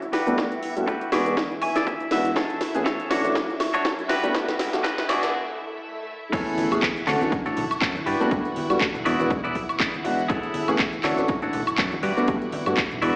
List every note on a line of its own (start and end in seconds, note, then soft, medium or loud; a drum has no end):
0.00 6.32 E4 medium
0.00 6.34 E5 medium
0.00 closed hi-hat soft
0.00 riser medium
0.00 shaker soft
0.13 0.23 G2 loud
0.13 0.74 F#4 medium
0.13 0.74 G4 medium
0.13 0.74 B4 loud
0.13 snare medium
0.13 open hi-hat loud
0.26 0.49 G3 loud
0.26 0.49 A3 medium
0.26 0.49 B3 medium
0.26 0.49 D4 medium
0.26 0.49 F#4 loud
0.26 closed hi-hat medium
0.26 shaker medium
0.38 0.48 G2 loud
0.38 kick loud
0.38 snare medium
0.38 shaker medium
0.52 closed hi-hat medium
0.52 shaker soft
0.63 open hi-hat loud
0.76 0.84 G2 loud
0.76 0.89 G3 medium
0.76 0.89 A3 medium
0.76 0.89 B3 medium
0.76 0.89 D4 medium
0.76 0.89 F#4 medium
0.76 closed hi-hat medium
0.76 shaker medium
0.87 1.12 F#4 medium
0.87 1.12 G4 medium
0.87 1.13 B4 medium
0.87 kick loud
0.87 shaker medium
1.01 closed hi-hat medium
1.01 shaker soft
1.12 1.22 E2 loud
1.12 1.24 E3 medium
1.12 1.24 G#3 medium
1.12 1.24 B3 medium
1.12 1.24 D4 medium
1.12 1.53 E4 medium
1.12 1.24 F#4 medium
1.12 1.53 G#4 medium
1.12 1.53 D5 medium
1.12 snare medium
1.12 open hi-hat loud
1.12 high woodblock medium
1.26 1.34 E1 loud
1.26 1.48 E3 medium
1.26 1.48 G#3 medium
1.26 1.48 B3 medium
1.26 1.48 D4 medium
1.26 1.48 F#4 medium
1.26 closed hi-hat medium
1.26 shaker medium
1.37 kick loud
1.37 snare medium
1.37 shaker medium
1.51 shaker soft
1.61 1.72 B1 medium
1.61 1.85 G#5 medium
1.61 muted clean electric guitar stroke soft
1.61 open hi-hat loud
1.61 high woodblock medium
1.76 1.83 B1 medium
1.76 1.94 E4 medium
1.76 1.94 G#4 medium
1.76 1.94 D5 medium
1.76 snare medium
1.76 closed hi-hat medium
1.76 shaker medium
1.87 2.10 E5 medium
1.87 kick loud
1.87 shaker medium
2.00 2.08 E1 loud
2.00 closed hi-hat soft
2.00 shaker soft
2.11 2.21 E2 loud
2.11 2.27 E3 medium
2.11 2.27 G#3 medium
2.11 2.27 B3 medium
2.11 2.27 D4 medium
2.11 2.27 F#4 medium
2.11 2.35 E5 medium
2.11 muted clean electric guitar stroke soft
2.11 snare medium
2.11 open hi-hat loud
2.25 closed hi-hat medium
2.25 shaker medium
2.36 2.46 A1 loud
2.36 2.61 G#4 medium
2.36 2.61 A4 loud
2.36 2.61 C#5 loud
2.36 kick loud
2.36 snare medium
2.36 shaker medium
2.50 closed hi-hat medium
2.50 shaker soft
2.61 snare medium
2.61 open hi-hat loud
2.74 2.83 A1 loud
2.74 2.87 E3 medium
2.74 2.87 A3 medium
2.74 2.88 B3 medium
2.74 2.88 C#4 medium
2.74 2.88 G#4 loud
2.74 closed hi-hat medium
2.74 shaker medium
2.86 3.11 G#4 medium
2.86 3.11 A4 medium
2.86 3.10 C#5 loud
2.86 kick loud
2.86 snare medium
2.86 shaker medium
3.00 closed hi-hat medium
3.00 shaker soft
3.10 3.20 D2 medium
3.10 3.22 E3 medium
3.10 3.22 A3 medium
3.10 3.22 C#4 medium
3.10 3.51 D4 medium
3.10 3.23 D4 medium
3.10 3.23 F#4 medium
3.10 3.52 F#4 medium
3.10 3.52 C#5 loud
3.10 snare medium
3.10 open hi-hat loud
3.10 high woodblock medium
3.24 3.32 D1 loud
3.24 3.37 E3 medium
3.24 3.37 A3 medium
3.24 3.37 C#4 medium
3.24 3.37 D4 medium
3.24 3.37 F#4 loud
3.24 closed hi-hat medium
3.24 shaker medium
3.35 kick loud
3.35 snare medium
3.35 shaker medium
3.49 3.57 A1 medium
3.49 shaker soft
3.60 3.70 D1 medium
3.60 muted clean electric guitar stroke soft
3.60 snare medium
3.60 open hi-hat loud
3.60 high woodblock medium
3.74 3.83 F#2 soft
3.74 3.92 D4 medium
3.74 3.92 F#4 medium
3.74 3.92 C#5 loud
3.74 closed hi-hat medium
3.74 shaker medium
3.85 4.03 F#2 medium
3.85 kick loud
3.85 snare medium
3.85 shaker medium
3.99 closed hi-hat soft
3.99 shaker soft
4.09 4.19 G2 loud
4.09 4.70 F#4 loud
4.09 4.71 G4 medium
4.09 4.71 B4 loud
4.09 snare medium
4.09 open hi-hat loud
4.23 4.45 G3 loud
4.23 4.45 A3 medium
4.23 4.46 B3 medium
4.23 4.46 D4 medium
4.23 4.46 F#4 loud
4.23 closed hi-hat medium
4.23 shaker medium
4.34 4.44 G2 loud
4.34 kick loud
4.34 snare medium
4.34 shaker medium
4.49 snare medium
4.49 closed hi-hat soft
4.49 shaker soft
4.59 snare medium
4.59 open hi-hat loud
4.73 4.81 G2 loud
4.73 4.86 G3 medium
4.73 4.86 A3 medium
4.73 4.86 B3 medium
4.73 4.86 D4 medium
4.73 4.86 F#4 medium
4.73 snare medium
4.73 closed hi-hat medium
4.73 shaker medium
4.84 5.08 F#4 medium
4.84 5.09 G4 medium
4.84 5.09 B4 loud
4.84 kick loud
4.84 snare loud
4.84 shaker medium
4.98 snare medium
4.98 closed hi-hat soft
4.98 shaker soft
5.08 5.19 E2 loud
5.08 5.21 E3 medium
5.08 5.21 G#3 medium
5.08 5.21 B3 medium
5.08 5.21 D4 medium
5.08 5.34 E4 medium
5.08 5.21 F#4 loud
5.08 5.34 G#4 medium
5.08 5.34 D5 loud
5.08 snare loud
5.08 open hi-hat loud
5.08 high woodblock medium
5.23 5.34 E3 medium
5.23 5.34 G#3 medium
5.23 5.34 B3 medium
5.23 5.34 D4 medium
5.23 5.34 F#4 medium
5.23 snare medium
5.23 closed hi-hat medium
5.23 shaker medium
5.34 swell medium
6.32 6.43 A1 loud
6.32 6.66 E3 loud
6.32 6.66 A3 medium
6.32 6.66 B3 medium
6.32 6.66 C#4 medium
6.32 6.72 E4 loud
6.32 13.16 E4 medium
6.32 6.72 G#4 loud
6.32 6.72 A4 medium
6.32 6.72 C#5 loud
6.32 13.16 F#5 medium
6.32 6.66 G#5 loud
6.32 kick loud
6.32 closed hi-hat loud
6.32 crash loud
6.32 tambourine medium
6.32 impact medium
6.32 shaker medium
6.46 closed hi-hat soft
6.46 tambourine soft
6.46 shaker soft
6.58 open hi-hat loud
6.58 high conga loud
6.71 6.79 A1 loud
6.71 6.84 E3 loud
6.71 6.84 A3 medium
6.71 6.84 B3 medium
6.71 6.84 C#4 medium
6.71 6.85 G#4 loud
6.71 tambourine medium
6.71 high woodblock medium
6.71 shaker medium
6.83 kick loud
6.83 clap loud
6.83 closed hi-hat loud
6.83 shaker medium
6.96 closed hi-hat soft
6.96 tambourine soft
6.96 shaker soft
7.07 7.17 D2 loud
7.07 7.19 E3 medium
7.07 7.19 A3 medium
7.07 7.19 C#4 medium
7.07 7.38 D4 medium
7.07 7.19 D4 medium
7.07 7.38 F#4 medium
7.07 7.19 F#4 medium
7.07 7.38 A4 medium
7.07 7.38 C#5 loud
7.07 clap medium
7.07 open hi-hat loud
7.07 high woodblock medium
7.21 7.29 D1 loud
7.21 7.34 E3 medium
7.21 7.34 A3 medium
7.21 7.34 C#4 medium
7.21 7.34 D4 medium
7.21 7.34 F#4 medium
7.21 closed hi-hat soft
7.21 tambourine medium
7.21 high conga medium
7.21 shaker medium
7.32 7.43 A1 soft
7.32 kick loud
7.32 closed hi-hat loud
7.32 tambourine medium
7.32 shaker medium
7.46 7.54 A1 medium
7.46 7.64 D4 medium
7.46 7.64 F#4 medium
7.46 7.64 A4 loud
7.46 7.64 C#5 loud
7.46 closed hi-hat soft
7.46 tambourine soft
7.46 shaker soft
7.57 7.67 D1 medium
7.57 open hi-hat loud
7.57 low conga loud
7.70 7.80 F#2 soft
7.70 closed hi-hat soft
7.70 tambourine medium
7.70 high woodblock medium
7.70 shaker medium
7.81 8.00 F#2 loud
7.81 7.95 D4 medium
7.81 7.96 F#4 medium
7.81 7.96 A4 medium
7.81 7.96 C#5 loud
7.81 kick loud
7.81 clap loud
7.81 closed hi-hat loud
7.81 shaker medium
7.95 closed hi-hat soft
7.95 tambourine soft
7.95 high conga medium
7.95 shaker soft
8.06 8.16 G2 loud
8.06 8.86 F#4 medium
8.06 8.86 G4 medium
8.06 8.87 B4 medium
8.06 8.87 D5 medium
8.06 open hi-hat loud
8.20 8.42 G3 loud
8.20 8.42 A3 medium
8.20 8.43 B3 medium
8.20 8.43 D4 medium
8.20 8.43 F#4 loud
8.20 closed hi-hat soft
8.20 tambourine medium
8.20 shaker medium
8.31 8.41 G2 loud
8.31 kick loud
8.31 closed hi-hat medium
8.31 tambourine medium
8.31 shaker medium
8.45 closed hi-hat soft
8.45 tambourine soft
8.45 shaker soft
8.56 open hi-hat loud
8.56 high conga loud
8.70 8.78 G2 loud
8.70 8.83 G3 medium
8.70 8.83 A3 medium
8.70 8.83 B3 medium
8.70 8.83 D4 medium
8.70 8.83 F#4 medium
8.70 closed hi-hat soft
8.70 tambourine medium
8.70 high woodblock medium
8.70 shaker medium
8.81 kick loud
8.81 clap loud
8.81 closed hi-hat medium
8.81 shaker medium
8.94 closed hi-hat soft
8.94 tambourine soft
8.94 low conga loud
8.94 shaker soft
9.05 9.15 E2 medium
9.05 9.18 E3 medium
9.05 9.18 G#3 medium
9.05 9.18 B3 medium
9.05 9.18 D4 medium
9.05 9.36 E4 medium
9.05 9.18 F#4 loud
9.05 9.36 G#4 medium
9.05 9.36 B4 medium
9.05 9.36 D5 medium
9.05 open hi-hat loud
9.05 high woodblock medium
9.19 9.57 E1 loud
9.19 9.41 E3 medium
9.19 9.42 G#3 medium
9.19 9.42 B3 medium
9.19 9.42 D4 medium
9.19 9.42 F#4 medium
9.19 tambourine medium
9.19 high conga medium
9.19 shaker medium
9.30 kick loud
9.30 closed hi-hat loud
9.30 tambourine medium
9.30 shaker medium
9.44 9.62 E4 loud
9.44 9.62 G#4 medium
9.44 9.62 B4 loud
9.44 9.62 D5 loud
9.44 closed hi-hat soft
9.44 tambourine soft
9.44 low conga medium
9.44 shaker soft
9.55 9.65 B1 medium
9.55 kick medium
9.55 open hi-hat loud
9.55 low conga loud
9.69 closed hi-hat soft
9.69 tambourine medium
9.69 high woodblock medium
9.69 shaker medium
9.79 9.94 E4 medium
9.79 9.94 G#4 medium
9.79 9.94 B4 medium
9.79 9.94 D5 loud
9.79 kick loud
9.79 clap loud
9.79 closed hi-hat medium
9.79 shaker medium
9.94 closed hi-hat soft
9.94 tambourine soft
9.94 high conga medium
9.94 shaker soft
10.04 10.20 E3 medium
10.04 10.20 G#3 medium
10.04 10.20 B3 medium
10.04 10.20 D4 medium
10.04 10.20 F#4 medium
10.04 muted clean electric guitar stroke soft
10.04 open hi-hat loud
10.19 tambourine medium
10.19 shaker medium
10.29 10.39 A1 loud
10.29 10.68 E4 loud
10.29 10.68 G#4 loud
10.29 10.69 A4 loud
10.29 10.69 C#5 loud
10.29 kick loud
10.29 closed hi-hat medium
10.29 tambourine medium
10.29 shaker medium
10.43 closed hi-hat soft
10.43 tambourine soft
10.43 shaker soft
10.54 open hi-hat loud
10.54 high conga loud
10.68 10.76 A1 loud
10.68 10.81 E3 medium
10.68 10.81 A3 medium
10.68 10.81 B3 medium
10.68 10.81 C#4 medium
10.68 10.81 G#4 loud
10.68 closed hi-hat soft
10.68 tambourine medium
10.68 high woodblock medium
10.68 shaker medium
10.79 kick loud
10.79 clap loud
10.79 closed hi-hat medium
10.79 shaker medium
10.93 closed hi-hat soft
10.93 tambourine soft
10.93 shaker soft
11.03 11.14 D2 medium
11.03 11.16 E3 medium
11.03 11.16 A3 medium
11.03 11.16 C#4 medium
11.03 11.34 D4 medium
11.03 11.16 D4 medium
11.03 11.34 F#4 medium
11.03 11.16 F#4 loud
11.03 11.34 A4 medium
11.03 11.35 C#5 loud
11.03 clap medium
11.03 open hi-hat loud
11.03 high woodblock medium
11.18 11.26 D1 loud
11.18 11.30 E3 medium
11.18 11.31 A3 medium
11.18 11.31 C#4 medium
11.18 11.31 D4 medium
11.18 11.31 F#4 loud
11.18 closed hi-hat soft
11.18 tambourine medium
11.18 high conga medium
11.18 shaker medium
11.28 11.40 A1 soft
11.28 kick loud
11.28 closed hi-hat medium
11.28 tambourine medium
11.28 shaker medium
11.42 11.50 A1 medium
11.42 11.61 D4 loud
11.42 11.61 F#4 loud
11.42 11.61 A4 loud
11.42 11.61 C#5 loud
11.42 closed hi-hat soft
11.42 tambourine soft
11.42 shaker soft
11.53 11.63 D1 medium
11.53 open hi-hat loud
11.53 low conga loud
11.67 11.77 F#2 soft
11.67 closed hi-hat soft
11.67 tambourine medium
11.67 high woodblock medium
11.67 shaker medium
11.78 11.96 F#2 loud
11.78 11.92 D4 medium
11.78 11.92 F#4 medium
11.78 11.92 A4 medium
11.78 11.93 C#5 medium
11.78 kick loud
11.78 clap loud
11.78 closed hi-hat medium
11.78 shaker medium
11.92 closed hi-hat soft
11.92 tambourine soft
11.92 high conga loud
11.92 shaker soft
12.03 12.13 G2 loud
12.03 12.83 F#4 medium
12.03 12.83 G4 medium
12.03 12.83 B4 medium
12.03 12.83 D5 loud
12.03 open hi-hat loud
12.17 12.39 G3 loud
12.17 12.39 A3 medium
12.17 12.39 B3 medium
12.17 12.39 D4 medium
12.17 12.39 F#4 loud
12.17 closed hi-hat soft
12.17 tambourine medium
12.17 shaker medium
12.28 12.38 G2 loud
12.28 kick loud
12.28 closed hi-hat medium
12.28 tambourine medium
12.28 shaker medium
12.42 closed hi-hat soft
12.42 tambourine soft
12.42 shaker soft
12.52 open hi-hat loud
12.52 high conga loud
12.66 12.74 G2 loud
12.66 12.79 G3 medium
12.66 12.79 A3 medium
12.66 12.79 B3 medium
12.66 12.79 D4 medium
12.66 12.80 F#4 medium
12.66 closed hi-hat soft
12.66 tambourine medium
12.66 high woodblock medium
12.66 shaker medium
12.77 kick loud
12.77 clap loud
12.77 closed hi-hat medium
12.77 tambourine medium
12.77 shaker medium
12.91 closed hi-hat soft
12.91 tambourine soft
12.91 low conga loud
12.91 shaker soft
13.02 13.12 E2 loud
13.02 13.14 E3 medium
13.02 13.14 G#3 medium
13.02 13.14 B3 medium
13.02 13.14 D4 medium
13.02 13.16 E4 medium
13.02 13.15 F#4 loud
13.02 13.16 G#4 medium
13.02 13.16 B4 medium
13.02 13.16 D5 loud
13.02 open hi-hat loud
13.02 high woodblock medium